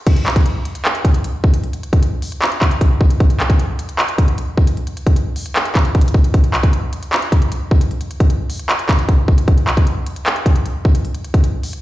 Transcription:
0.07 kick, closed hi-hat, crash
0.16 closed hi-hat
0.26 clap, closed hi-hat
0.36 kick, closed hi-hat
0.46 closed hi-hat
0.65 closed hi-hat
0.75 closed hi-hat
0.85 clap, closed hi-hat
0.95 closed hi-hat
1.05 kick, closed hi-hat
1.14 closed hi-hat
1.24 closed hi-hat
1.44 kick
1.54 closed hi-hat
1.64 closed hi-hat
1.73 closed hi-hat
1.83 closed hi-hat
1.93 kick, closed hi-hat
2.03 closed hi-hat
2.22 open hi-hat
2.32 closed hi-hat
2.42 clap, closed hi-hat
2.52 closed hi-hat
2.62 kick, clap, closed hi-hat
2.71 closed hi-hat
2.81 kick, closed hi-hat
3.01 kick
3.10 closed hi-hat
3.20 kick, closed hi-hat
3.30 closed hi-hat
3.40 clap, closed hi-hat
3.50 kick, closed hi-hat
3.59 closed hi-hat
3.79 closed hi-hat
3.89 closed hi-hat
3.99 clap, closed hi-hat
4.08 closed hi-hat
4.18 kick, closed hi-hat
4.28 closed hi-hat
4.38 closed hi-hat
4.58 kick
4.67 closed hi-hat
4.77 closed hi-hat
4.87 closed hi-hat
4.97 closed hi-hat
5.07 kick, closed hi-hat
5.16 closed hi-hat
5.36 open hi-hat
5.46 closed hi-hat
5.56 clap, closed hi-hat
5.65 closed hi-hat
5.75 kick, clap, closed hi-hat
5.85 closed hi-hat
5.95 kick, closed hi-hat
6.01 closed hi-hat
6.08 closed hi-hat
6.14 kick
6.24 closed hi-hat
6.34 kick, closed hi-hat
6.44 closed hi-hat
6.54 clap, closed hi-hat
6.63 kick, closed hi-hat
6.73 closed hi-hat
6.93 closed hi-hat
7.03 closed hi-hat
7.12 clap, closed hi-hat
7.22 closed hi-hat
7.32 kick, closed hi-hat
7.42 closed hi-hat
7.52 closed hi-hat
7.71 kick
7.81 closed hi-hat
7.91 closed hi-hat
8.01 closed hi-hat
8.11 closed hi-hat
8.20 kick, closed hi-hat
8.30 closed hi-hat
8.50 open hi-hat
8.59 closed hi-hat
8.69 clap, closed hi-hat
8.79 closed hi-hat
8.89 kick, clap, closed hi-hat
8.99 closed hi-hat
9.09 kick, closed hi-hat
9.28 kick
9.38 closed hi-hat
9.48 kick, closed hi-hat
9.58 closed hi-hat
9.67 clap, closed hi-hat
9.77 kick, closed hi-hat
9.87 closed hi-hat
10.06 closed hi-hat
10.16 closed hi-hat
10.26 clap, closed hi-hat
10.36 closed hi-hat
10.46 kick, closed hi-hat
10.56 closed hi-hat
10.66 closed hi-hat
10.85 kick
10.95 closed hi-hat
11.05 closed hi-hat
11.15 closed hi-hat
11.24 closed hi-hat
11.34 kick, closed hi-hat
11.44 closed hi-hat
11.63 open hi-hat
11.73 closed hi-hat

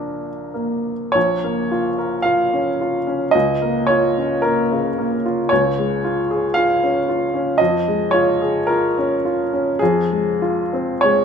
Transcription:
Already playing: A#1 A#3 D4 A#4
0.54 A#3
1.12 A#1 C#5
1.44 A#3
1.72 F4
1.98 A#4
2.22 F4 F5
2.53 C#4
2.81 F4
3.07 C#4
3.31 C#2 D#5
3.62 A#3
3.87 F4 C#5
4.17 C#4
4.42 A#3 A#4
4.72 C#3
4.99 A#3
5.26 F4
5.49 C#2 C#5
5.78 G#3
6.04 F4
6.31 G#4
6.54 F4 F5
6.84 C#4
7.09 F4
7.34 C#4
7.58 F2 D#5
7.88 G#3
8.11 F4 C#5
8.42 G#4
8.67 F4 A#4
8.98 C#4
9.25 F4
9.53 C#4
9.79 F2 G#4
10.11 G#3
10.42 F4
10.73 C4
11.01 G#3 C#5

